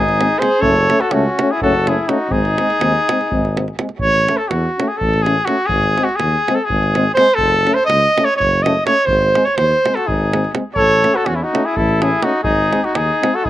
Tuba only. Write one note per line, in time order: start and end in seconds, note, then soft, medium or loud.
0.00 0.31 G#1 medium
0.61 0.89 F#1 loud
1.11 1.27 C#2 medium
1.61 1.99 F#1 medium
2.30 2.58 G#1 medium
2.80 2.96 D#2 medium
3.31 3.69 G#1 medium
3.99 4.27 A1 medium
4.51 4.66 E2 medium
5.01 5.39 A1 loud
5.69 5.97 G#1 medium
6.20 6.36 D#2 medium
6.70 7.07 G#1 loud
7.39 7.66 F#1 medium
7.90 8.05 C#2 loud
8.40 8.77 F#1 medium
9.08 9.35 G#1 medium
9.57 9.73 D#2 medium
10.08 10.45 G#1 medium
10.76 11.04 A1 medium
11.26 11.42 E2 medium
11.77 12.14 A1 loud
12.44 12.72 G#1 medium
12.95 13.10 D#2 medium
13.45 13.50 G#1 loud